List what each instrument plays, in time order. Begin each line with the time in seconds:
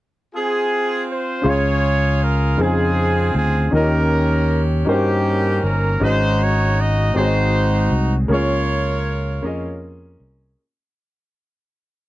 0.33 horn section C4 F4 G#4
1.10 horn section C5
1.42 fingered electric bass C#2, grand piano C#3 C#4 F4 G#4 F5 C6
1.48 horn section F4 G#4 C#5
2.23 horn section A#4
2.57 fingered electric bass F2, grand piano C#3 D#4 G#4 C5 G#5
2.61 horn section C4 F4 G#4, grand piano F4
3.35 fingered electric bass D2, horn section G#4
3.71 fingered electric bass D#2, grand piano D#3 C#4 D#4 F4 A#4
3.75 horn section C#4 G4 A#4, grand piano D#5
3.79 grand piano G4
4.85 fingered electric bass G2, grand piano C#4 D#4 F#4 A#4
4.89 horn section A#3 C#4 G4, grand piano C5
4.93 grand piano G4
5.64 fingered electric bass G1, horn section A#4
6.00 fingered electric bass G#1, grand piano G#2 C#4 D#4 F#4 G#4 D#5
6.04 horn section D#4 F#4 C5
6.42 horn section C#5
6.79 horn section D#5
7.14 fingered electric bass G#1, grand piano G#2 C4 D#4 F#4 G#4 C#5, horn section D#4 F#4 C5
7.24 grand piano D#5
7.91 fingered electric bass C2
8.28 fingered electric bass C#2, grand piano C#3 A#3 C#4 F4 G#4, horn section C#5
8.32 horn section F4 A#4, grand piano C#5
9.42 fingered electric bass F2, grand piano A#3 C#4 F4 G#4 D#5
10.20 fingered electric bass C2